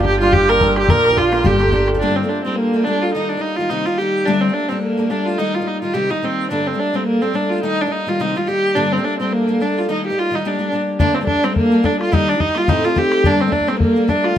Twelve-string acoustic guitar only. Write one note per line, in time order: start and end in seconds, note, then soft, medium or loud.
0.00 0.20 A#3 medium
0.00 0.21 D4 medium
0.00 0.20 G4 medium
0.20 0.48 G3 soft
0.20 0.49 A#3 medium
0.20 0.50 D4 medium
0.20 0.49 G4 medium
0.49 0.60 G3 medium
0.49 0.61 A#3 medium
0.49 0.62 D4 medium
0.49 0.62 G4 medium
0.61 0.83 G3 medium
0.61 0.83 A#3 medium
0.61 0.83 D4 medium
0.61 0.82 G4 medium
0.83 0.89 A#3 soft
0.83 0.89 D4 medium
0.83 0.89 G4 medium
0.90 1.11 A#3 medium
0.90 1.11 D4 medium
0.90 1.11 F4 medium
0.90 1.09 A#4 medium
1.11 1.31 D4 soft
1.11 1.32 F4 soft
1.11 1.33 A#4 medium
1.31 1.43 A#3 medium
1.31 1.44 D4 medium
1.31 1.44 F4 medium
1.31 1.45 A#4 medium
1.44 1.60 G3 medium
1.44 1.57 A#3 medium
1.44 1.58 D4 medium
1.44 1.59 G4 medium
1.44 1.60 A4 medium
1.58 1.70 A#3 medium
1.58 1.71 D4 medium
1.58 1.72 G4 medium
1.58 1.73 A4 medium
1.72 1.94 A#3 soft
1.72 1.95 D4 medium
1.72 1.94 G4 medium
1.72 1.93 A4 medium
1.94 2.01 D4 medium
1.94 2.01 G4 medium
1.94 2.01 A4 medium
2.01 2.23 G2 medium
2.01 2.24 D3 medium
2.01 2.24 G3 medium
2.01 2.23 A3 medium
2.01 2.23 A#3 medium
2.01 2.22 D4 medium
2.23 2.43 G3 soft
2.23 2.45 A3 medium
2.23 2.45 A#3 medium
2.23 2.45 D4 medium
2.45 2.73 G3 medium
2.45 2.73 A3 soft
2.45 2.73 A#3 medium
2.45 2.74 D4 medium
2.73 2.85 G3 soft
2.73 2.86 A3 medium
2.73 2.86 A#3 soft
2.73 2.87 D4 medium
2.86 3.14 G3 medium
2.86 3.15 A3 medium
2.86 3.16 A#3 soft
2.86 3.15 D4 medium
3.15 3.36 D#3 medium
3.15 3.37 G3 medium
3.15 3.37 A#3 medium
3.15 3.36 D#4 medium
3.37 3.58 G3 soft
3.37 3.59 A#3 soft
3.37 3.59 D#4 medium
3.58 3.69 D#3 medium
3.58 3.70 G3 medium
3.58 3.70 A#3 medium
3.58 3.70 D#4 medium
3.70 3.86 C3 medium
3.70 3.85 D#3 medium
3.70 3.85 G3 medium
3.70 3.86 A#3 medium
3.70 3.86 D#4 medium
3.86 3.98 D#3 soft
3.86 3.98 G3 medium
3.86 3.99 A#3 medium
3.86 4.00 D#4 medium
3.99 4.27 D#3 medium
3.99 4.27 G3 medium
3.99 4.27 A#3 medium
3.99 4.28 D#4 medium
4.26 4.48 G2 medium
4.26 4.49 D3 medium
4.26 4.49 G3 medium
4.26 4.48 A3 medium
4.26 4.49 A#3 medium
4.26 4.46 D4 medium
4.48 4.68 G3 soft
4.48 4.70 A3 medium
4.48 4.69 A#3 soft
4.48 4.70 D4 soft
4.69 4.97 G3 medium
4.69 4.98 A3 soft
4.69 4.98 A#3 medium
4.69 4.98 D4 medium
4.97 5.09 G3 soft
4.97 5.10 A3 soft
4.97 5.10 A#3 medium
4.97 5.11 D4 medium
5.10 5.38 G3 medium
5.10 5.39 A3 medium
5.10 5.39 A#3 soft
5.10 5.40 D4 medium
5.38 5.61 D#3 medium
5.38 5.61 G3 medium
5.38 5.60 A#3 medium
5.38 5.59 D#4 medium
5.60 5.82 G3 soft
5.60 5.82 A#3 medium
5.60 5.82 D#4 soft
5.82 5.93 D#3 medium
5.82 5.94 G3 soft
5.82 5.94 A#3 medium
5.82 5.94 D#4 medium
5.94 6.10 C3 medium
5.94 6.07 D#3 medium
5.94 6.09 G3 medium
5.94 6.10 A#3 medium
5.94 6.10 D#4 medium
6.09 6.21 D#3 soft
6.09 6.21 G3 soft
6.09 6.22 A#3 medium
6.09 6.23 D#4 medium
6.22 6.50 D#3 soft
6.22 6.51 G3 soft
6.22 6.51 A#3 medium
6.22 6.51 D#4 medium
6.50 6.73 G2 medium
6.50 6.73 D3 medium
6.50 6.73 G3 medium
6.50 6.73 A3 medium
6.50 6.73 A#3 medium
6.50 6.72 D4 medium
6.73 6.92 G3 soft
6.73 6.94 A3 medium
6.73 6.93 A#3 soft
6.73 6.94 D4 soft
6.93 7.21 G3 medium
6.93 7.21 A3 medium
6.93 7.21 A#3 medium
6.93 7.22 D4 soft
7.21 7.32 G3 soft
7.21 7.33 A3 medium
7.21 7.33 A#3 soft
7.21 7.34 D4 medium
7.33 7.63 G3 medium
7.33 7.63 A3 medium
7.33 7.63 A#3 soft
7.33 7.64 D4 medium
7.63 7.85 D#3 medium
7.63 7.85 G3 medium
7.63 7.86 A#3 medium
7.63 7.84 D#4 medium
7.85 8.06 G3 soft
7.85 8.07 A#3 soft
7.85 8.07 D#4 medium
8.07 8.19 D#3 medium
8.07 8.20 G3 medium
8.07 8.20 A#3 medium
8.07 8.20 D#4 medium
8.20 8.35 C3 medium
8.20 8.34 D#3 medium
8.20 8.35 G3 medium
8.20 8.35 A#3 medium
8.20 8.36 D#4 medium
8.35 8.46 D#3 soft
8.35 8.47 G3 soft
8.35 8.48 A#3 medium
8.35 8.48 D#4 soft
8.47 8.75 D#3 soft
8.47 8.76 G3 medium
8.47 8.76 A#3 medium
8.47 8.77 D#4 medium
8.75 8.98 G2 medium
8.75 8.98 D3 medium
8.75 8.98 G3 medium
8.75 8.97 A3 medium
8.75 8.98 A#3 medium
8.75 8.96 D4 medium
8.97 9.18 G3 soft
8.97 9.20 A3 soft
8.97 9.19 A#3 soft
8.97 9.19 D4 medium
9.20 9.47 G3 soft
9.20 9.48 A3 soft
9.20 9.48 A#3 medium
9.20 9.48 D4 medium
9.47 9.59 G3 soft
9.47 9.61 A3 soft
9.47 9.60 A#3 medium
9.47 9.61 D4 soft
9.60 9.88 G3 medium
9.60 9.89 A3 medium
9.60 9.88 A#3 medium
9.60 9.89 D4 medium
9.88 10.10 D#3 medium
9.88 10.10 G3 medium
9.88 10.11 A#3 medium
9.88 10.09 D#4 medium
10.10 10.31 G3 soft
10.10 10.32 A#3 medium
10.10 10.32 D#4 medium
10.31 10.44 D#3 medium
10.31 10.44 G3 medium
10.31 10.44 A#3 medium
10.31 10.45 D#4 medium
10.45 10.57 G3 medium
10.45 10.58 A#3 medium
10.45 10.59 D4 medium
10.45 10.60 G4 medium
10.58 10.71 G3 soft
10.58 10.72 A#3 medium
10.58 10.72 D4 medium
10.58 10.73 G4 soft
10.72 11.00 G3 soft
10.72 10.99 A#3 soft
10.72 11.00 D4 medium
10.72 11.01 G4 medium
11.00 11.22 G2 medium
11.00 11.22 D3 medium
11.00 11.22 G3 medium
11.00 11.20 A3 medium
11.00 11.21 A#3 medium
11.00 11.20 D4 medium
11.21 11.42 G3 soft
11.21 11.43 A3 soft
11.21 11.43 A#3 soft
11.21 11.43 D4 medium
11.43 11.71 G3 medium
11.43 11.72 A3 medium
11.43 11.71 A#3 medium
11.43 11.72 D4 medium
11.72 11.82 G3 medium
11.72 11.83 A3 medium
11.72 11.82 A#3 medium
11.72 11.84 D4 medium
11.83 12.11 G3 medium
11.83 12.12 A3 medium
11.83 12.11 A#3 medium
11.83 12.13 D4 medium
12.12 12.34 D#3 medium
12.12 12.34 G3 medium
12.12 12.34 A#3 medium
12.12 12.34 D#4 medium
12.12 12.33 G4 medium
12.34 12.54 G3 soft
12.34 12.56 D#4 soft
12.34 12.56 G4 medium
12.55 12.68 G3 soft
12.55 12.68 A#3 medium
12.55 12.68 D#4 medium
12.55 12.68 G4 medium
12.68 12.84 A2 medium
12.68 12.83 A3 medium
12.68 12.84 C4 medium
12.68 12.84 D#4 medium
12.68 12.84 G4 medium
12.84 12.94 A3 soft
12.84 12.96 C4 soft
12.84 12.96 D#4 medium
12.84 12.96 G4 medium
12.95 13.24 A3 medium
12.95 13.25 C4 medium
12.95 13.25 D#4 medium
12.95 13.26 G4 medium
13.25 13.46 G2 medium
13.25 13.46 D3 medium
13.25 13.47 G3 medium
13.25 13.46 A3 medium
13.25 13.47 A#3 medium
13.25 13.46 D4 medium
13.47 13.67 G3 soft
13.47 13.68 A3 medium
13.47 13.66 A#3 soft
13.47 13.68 D4 medium
13.67 13.96 G3 medium
13.67 13.97 A3 medium
13.67 13.95 A#3 medium
13.67 13.96 D4 medium
13.96 14.08 G3 medium
13.96 14.08 A3 medium
13.96 14.07 A#3 soft
13.96 14.09 D4 soft
14.08 14.37 G3 medium
14.08 14.36 A3 medium
14.08 14.35 A#3 medium
14.08 14.37 D4 medium